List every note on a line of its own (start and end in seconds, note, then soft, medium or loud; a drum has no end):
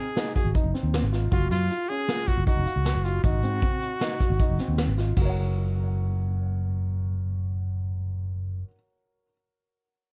0.00 0.34 G#4 medium
0.17 0.30 D#4 medium
0.17 snare loud
0.17 closed hi-hat medium
0.35 0.50 F#4 medium
0.35 0.53 G#4 medium
0.35 kick medium
0.35 closed hi-hat medium
0.45 0.53 G#1 medium
0.55 0.69 D#4 medium
0.55 kick medium
0.55 closed hi-hat medium
0.64 0.73 F#1 medium
0.74 1.02 C4 medium
0.74 snare soft
0.74 closed hi-hat medium
0.83 1.00 D#2 medium
0.94 snare loud
0.94 closed hi-hat medium
1.03 1.28 G#1 medium
1.13 1.27 F4 medium
1.13 snare soft
1.13 closed hi-hat medium
1.32 1.49 F#1 medium
1.32 1.50 F4 medium
1.32 1.60 F#4 medium
1.32 kick loud
1.32 closed hi-hat medium
1.51 1.68 F#2 medium
1.51 1.91 F4 loud
1.51 snare soft
1.51 closed hi-hat soft
1.70 1.84 F4 medium
1.70 closed hi-hat medium
1.89 2.04 C#4 medium
1.89 2.29 G#4 loud
1.89 closed hi-hat soft
2.08 2.37 F4 medium
2.08 snare loud
2.08 closed hi-hat medium
2.28 2.46 F#4 medium
2.28 kick medium
2.28 closed hi-hat medium
2.37 2.46 F#1 medium
2.47 2.61 D#4 medium
2.47 3.06 F#4 medium
2.47 kick medium
2.47 closed hi-hat medium
2.57 2.65 F1 medium
2.66 2.94 F5 medium
2.66 closed hi-hat medium
2.76 2.93 C#2 medium
2.85 snare loud
2.85 closed hi-hat medium
2.95 3.21 F#1 medium
3.05 3.24 F4 medium
3.05 3.19 F#4 medium
3.05 closed hi-hat medium
3.24 3.41 G#1 medium
3.24 3.38 D#4 medium
3.24 4.74 F#4 medium
3.24 kick loud
3.24 closed hi-hat medium
3.43 3.60 G#2 medium
3.43 3.58 C4 medium
3.43 closed hi-hat medium
3.62 3.91 C4 medium
3.62 kick loud
3.62 closed hi-hat medium
3.82 closed hi-hat medium
4.01 4.15 D#4 medium
4.01 snare medium
4.01 closed hi-hat medium
4.20 4.35 F#4 medium
4.20 kick medium
4.20 snare soft
4.20 closed hi-hat medium
4.30 4.39 G#1 medium
4.39 4.54 D#4 medium
4.39 kick medium
4.39 closed hi-hat medium
4.49 4.58 F#1 medium
4.59 4.88 C4 medium
4.59 snare soft
4.59 closed hi-hat medium
4.68 4.86 D#2 medium
4.78 snare loud
4.78 closed hi-hat medium
4.88 5.13 G#1 medium
4.98 5.12 F4 medium
4.98 snare soft
4.98 closed hi-hat medium
5.16 8.62 F#1 medium
5.16 8.63 F#4 medium
5.16 kick medium
5.16 crash medium
5.21 8.67 A#4 medium
5.21 8.71 C#5 medium
5.29 8.75 F#5 medium